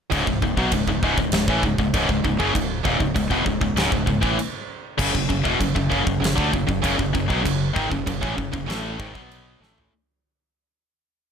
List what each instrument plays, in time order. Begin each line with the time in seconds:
0.11 fingered electric bass C#1, distorted electric guitar C#2 G#2, kick, china
0.27 fingered electric bass C#1, distorted electric guitar C#2 G#2, kick
0.42 fingered electric bass C#1, distorted electric guitar C#2 G#2, kick
0.57 fingered electric bass B1, distorted electric guitar B2 F#3, kick
0.72 fingered electric bass C#1, distorted electric guitar C#2 G#2, kick, china
0.87 fingered electric bass C#1, distorted electric guitar C#2 G#2, kick
1.03 fingered electric bass C#1, distorted electric guitar C#2 G#2, kick
1.18 fingered electric bass C#1, distorted electric guitar C#2 G#2, kick
1.32 fingered electric bass C#1, distorted electric guitar C#2 G#2, snare, china
1.48 fingered electric bass A1, distorted electric guitar A2 E3, kick
1.63 fingered electric bass C#1, distorted electric guitar C#2 G#2, kick
1.78 fingered electric bass C#1, distorted electric guitar C#2 G#2, kick
1.94 fingered electric bass C#1, distorted electric guitar C#2 G#2, kick, china
2.09 fingered electric bass C#1, distorted electric guitar C#2 G#2, kick
2.25 fingered electric bass C#1, distorted electric guitar C#2 G#2, kick
2.39 fingered electric bass F#1, distorted electric guitar F#2 C#3, kick
2.54 fingered electric bass C#1, distorted electric guitar C#2 G#2, kick, china
2.85 fingered electric bass D#1, distorted electric guitar D#2 A#2, kick
3.00 fingered electric bass C#1, distorted electric guitar C#2 G#2, kick
3.15 fingered electric bass C#1, distorted electric guitar C#2 G#2, kick, china
3.30 fingered electric bass E1, distorted electric guitar E2 B2, kick
3.46 fingered electric bass C#1, distorted electric guitar C#2 G#2, kick
3.61 fingered electric bass C#1, distorted electric guitar C#2 G#2, kick
3.74 fingered electric bass C#1, distorted electric guitar C#2 G#2, china
3.78 snare
3.91 fingered electric bass C#1, distorted electric guitar C#2 G#2, kick
4.06 fingered electric bass C#1, distorted electric guitar C#2 G#2, kick
4.21 fingered electric bass A1, distorted electric guitar A2 E3, kick
4.39 china
4.98 fingered electric bass F#1, distorted electric guitar F#2 C#3, kick, crash, china
5.14 fingered electric bass F#1, distorted electric guitar F#2 C#3, kick
5.29 fingered electric bass F#1, distorted electric guitar F#2 C#3, kick
5.44 fingered electric bass E1, distorted electric guitar E2 B2, kick
5.60 fingered electric bass F#1, distorted electric guitar F#2 C#3, kick, china
5.75 fingered electric bass F#1, distorted electric guitar F#2 C#3, kick
5.89 fingered electric bass F#1, distorted electric guitar F#2 C#3, kick
6.05 fingered electric bass F#1, distorted electric guitar F#2 C#3, kick
6.21 fingered electric bass F#1, distorted electric guitar F#2 C#3, china
6.25 snare
6.36 fingered electric bass D2, distorted electric guitar D3 A3, kick
6.52 fingered electric bass F#1, distorted electric guitar F#2 C#3, kick
6.67 fingered electric bass F#1, distorted electric guitar F#2 C#3, kick
6.83 fingered electric bass F#1, distorted electric guitar F#2 C#3, kick, china
6.98 fingered electric bass F#1, distorted electric guitar F#2 C#3, kick
7.13 fingered electric bass F#1, distorted electric guitar F#2 C#3, kick
7.28 fingered electric bass B1, distorted electric guitar B2 F#3, kick
7.42 fingered electric bass F#1, distorted electric guitar F#2 C#3, kick, china
7.73 fingered electric bass G#1, distorted electric guitar G#2 D#3, kick
7.90 fingered electric bass F#1, distorted electric guitar F#2 C#3, kick
8.07 fingered electric bass F#1, distorted electric guitar F#2 C#3, kick, china
8.21 fingered electric bass A1, distorted electric guitar A2 E3, kick
8.37 fingered electric bass F#1, distorted electric guitar F#2 C#3, kick
8.53 fingered electric bass F#1, distorted electric guitar F#2 C#3, kick
8.68 fingered electric bass A1, distorted electric guitar A2 E3 A3, snare, china
8.98 fingered electric bass G#1, distorted electric guitar G#2 D#3, kick
9.14 fingered electric bass B1, distorted electric guitar B2 F#3 B3, kick
9.31 china
9.60 fingered electric bass A1, distorted electric guitar A2 E3 A3, snare
9.78 floor tom